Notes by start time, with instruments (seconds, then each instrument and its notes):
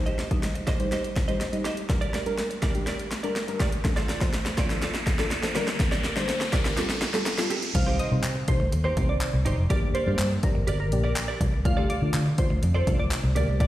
Already playing: synth stab G3 D#4 C5, riser
0.06 clean electric guitar G4 C5 D#5, closed hi-hat
0.18 clean electric guitar G4 C5 D#5, snare, closed hi-hat
0.31 synth stab G3 D#4 D#5, muted clean electric guitar stroke, kick, closed hi-hat
0.43 snare, closed hi-hat
0.55 muted clean electric guitar stroke, closed hi-hat
0.67 clean electric guitar G4 C5 D#5, kick, snare, closed hi-hat
0.79 synth stab G3 D#4 C5, muted clean electric guitar stroke, closed hi-hat
0.91 clean electric guitar G4 C5 D#5, snare, closed hi-hat
1.04 muted clean electric guitar stroke, closed hi-hat
1.16 muted clean electric guitar stroke, kick, snare, closed hi-hat
1.28 synth stab G3 D#4 C5, clean electric guitar G4 C5 D#5, closed hi-hat
1.41 snare, closed hi-hat
1.52 synth stab G3 D#4 D#5, muted clean electric guitar stroke, closed hi-hat
1.64 clean electric guitar G4 C5 D#5, snare, closed hi-hat
1.77 muted clean electric guitar stroke, closed hi-hat
1.89 synth stab G3 D4 A#4, muted clean electric guitar stroke, kick, snare, closed hi-hat
2.01 clean electric guitar G4 A#4 D5, closed hi-hat
2.13 clean electric guitar G4 A#4 D5, snare, closed hi-hat
2.26 synth stab G3 D4 A#4, muted clean electric guitar stroke, closed hi-hat
2.38 snare, closed hi-hat
2.50 muted clean electric guitar stroke, closed hi-hat
2.62 clean electric guitar G4 A#4 D5, kick, snare, closed hi-hat
2.74 synth stab G3 D4 G4, muted clean electric guitar stroke, closed hi-hat
2.86 clean electric guitar G4 A#4 D5, snare, closed hi-hat
2.99 muted clean electric guitar stroke, closed hi-hat
3.11 muted clean electric guitar stroke, snare, closed hi-hat
3.23 synth stab G3 D4 A#4, clean electric guitar G4 A#4 D5, closed hi-hat
3.36 snare, closed hi-hat
3.48 synth stab G3 D4 A#4, muted clean electric guitar stroke, closed hi-hat
3.60 clean electric guitar G4 A#4 D5, kick, snare, closed hi-hat
3.72 muted clean electric guitar stroke, closed hi-hat
3.84 synth stab F3 D4 A4, muted clean electric guitar stroke, kick, snare, closed hi-hat
3.96 clean electric guitar F4 A4 D5, snare, closed hi-hat
4.09 clean electric guitar F4 A4 D5, snare, closed hi-hat
4.21 synth stab F3 D4 C5, muted clean electric guitar stroke, kick, snare, closed hi-hat
4.33 snare, closed hi-hat
4.45 muted clean electric guitar stroke, snare, closed hi-hat
4.57 clean electric guitar F4 A4 D5, kick, snare, closed hi-hat
4.70 synth stab F3 D4 A4, muted clean electric guitar stroke, snare, closed hi-hat
4.82 clean electric guitar F4 A4 D5, snare, closed hi-hat
4.94 muted clean electric guitar stroke, snare, closed hi-hat
5.06 muted clean electric guitar stroke, kick, snare, closed hi-hat
5.19 synth stab F3 D4 A4, clean electric guitar F4 A4 D5, snare, closed hi-hat
5.31 snare, closed hi-hat
5.43 synth stab F3 D4 A4, snare, closed hi-hat
5.55 synth stab D3 G3 D4 A#4, clean electric guitar G4 A#4 D5, snare, closed hi-hat
5.67 muted clean electric guitar stroke, snare, closed hi-hat
5.80 muted clean electric guitar stroke, kick, snare, closed hi-hat
5.92 clean electric guitar G4 A#4 D5, snare, closed hi-hat
6.04 clean electric guitar G4 A#4 D5, snare, closed hi-hat
6.16 synth stab D3 G3 D4 C5, muted clean electric guitar stroke, snare, closed hi-hat
6.29 snare, closed hi-hat
6.41 muted clean electric guitar stroke, snare, closed hi-hat
6.53 clean electric guitar G4 A#4 D5, kick, snare, closed hi-hat
6.65 synth stab D3 G3 D4 A#4, muted clean electric guitar stroke, snare, closed hi-hat
6.77 synth stab G3 F4 A4, clean electric guitar C4 G4 A4, snare, closed hi-hat
6.89 muted clean electric guitar stroke, snare, closed hi-hat
7.02 muted clean electric guitar stroke, snare, closed hi-hat
7.14 synth stab G3 F4 A4, clean electric guitar C4 G4 A4, snare, closed hi-hat
7.26 snare, closed hi-hat
7.38 synth stab G3 F4 A4, muted clean electric guitar stroke, snare, closed hi-hat
7.50 clean electric guitar C4 G4 A4, closed hi-hat
7.62 muted clean electric guitar stroke, closed hi-hat
7.75 fingered electric bass C2, synth stab G3 C4 D#4 C5, synth pluck F5, muted clean electric guitar stroke, kick, closed hi-hat, crash
7.87 synth stab G3 C4 D#4 C5, clean electric guitar D#4 G4 C5
7.99 clean electric guitar D#4 G4 C5, synth pluck D#5, closed hi-hat
8.11 fingered electric bass C3, synth stab G3 C4 D#4 C5, muted clean electric guitar stroke
8.23 fingered electric bass C3, muted clean electric guitar stroke, clap, closed hi-hat
8.36 muted clean electric guitar stroke
8.48 synth stab G3 C4 D#4 A4, synth pluck C5, kick, closed hi-hat
8.60 fingered electric bass D2, muted clean electric guitar stroke
8.72 fingered electric bass D#2, muted clean electric guitar stroke, closed hi-hat
8.84 clean electric guitar D#4 G4 C5, synth pluck C5
8.96 fingered electric bass C2, synth stab G3 C4 D#4 C5, clean electric guitar D#4 G4 C5, kick, closed hi-hat
9.09 synth pluck D5, muted clean electric guitar stroke
9.21 muted clean electric guitar stroke, clap, closed hi-hat
9.33 fingered electric bass C2, muted clean electric guitar stroke
9.45 fingered electric bass G1, clean electric guitar D#4 G4 C5, closed hi-hat
9.58 fingered electric bass F1, muted clean electric guitar stroke
9.70 fingered electric bass G1, synth stab A#3 D4 G4 D5, clean electric guitar G4 A#4 D5, synth pluck D5, kick, closed hi-hat
9.82 synth stab A#3 D4 G4 D5, muted clean electric guitar stroke
9.94 clean electric guitar G4 A#4 D5, synth pluck C5, closed hi-hat
10.06 fingered electric bass G2, synth stab A#3 D4 G4 C5, clean electric guitar G4 A#4 D5
10.19 fingered electric bass G2, muted clean electric guitar stroke, clap, closed hi-hat
10.31 muted clean electric guitar stroke
10.43 synth stab A#3 D4 G4 D5, synth pluck A#4, kick, closed hi-hat
10.55 fingered electric bass G1, muted clean electric guitar stroke
10.67 fingered electric bass G1, clean electric guitar G4 A#4 D5, closed hi-hat
10.79 synth pluck A#4, muted clean electric guitar stroke
10.92 fingered electric bass A#1, synth stab A#3 D4 G4 D5, muted clean electric guitar stroke, closed hi-hat
11.04 clean electric guitar G4 A#4 D5, synth pluck D5
11.16 muted clean electric guitar stroke, clap, closed hi-hat
11.28 clean electric guitar G4 A#4 D5
11.40 fingered electric bass C2, muted clean electric guitar stroke, kick, closed hi-hat
11.53 muted clean electric guitar stroke
11.65 fingered electric bass D2, synth stab A3 D4 F4 D5, synth pluck F5, muted clean electric guitar stroke, kick, closed hi-hat
11.77 synth stab A3 D4 F4 G4, clean electric guitar F4 A4 D5
11.89 clean electric guitar F4 A4 D5, synth pluck D5, closed hi-hat
12.01 fingered electric bass D3, synth stab A3 D4 F4 D5, muted clean electric guitar stroke
12.14 fingered electric bass D3, muted clean electric guitar stroke, clap, closed hi-hat
12.26 muted clean electric guitar stroke
12.38 synth stab A3 D4 F4 D5, synth pluck C5, kick, closed hi-hat
12.50 fingered electric bass D2, muted clean electric guitar stroke
12.63 fingered electric bass F2, muted clean electric guitar stroke, closed hi-hat
12.75 clean electric guitar F4 A4 D5, synth pluck C5
12.87 fingered electric bass C2, synth stab A3 D4 F4 D5, clean electric guitar F4 A4 D5, kick, closed hi-hat
12.99 synth pluck D5, muted clean electric guitar stroke
13.11 muted clean electric guitar stroke, clap, closed hi-hat
13.23 fingered electric bass C2, muted clean electric guitar stroke
13.35 fingered electric bass D2, synth stab A#3 D4 G4 D5, clean electric guitar G4 A#4 D5, closed hi-hat
13.48 fingered electric bass C2, muted clean electric guitar stroke
13.60 fingered electric bass D2, clean electric guitar G4 A#4 D5, synth pluck D5, kick, closed hi-hat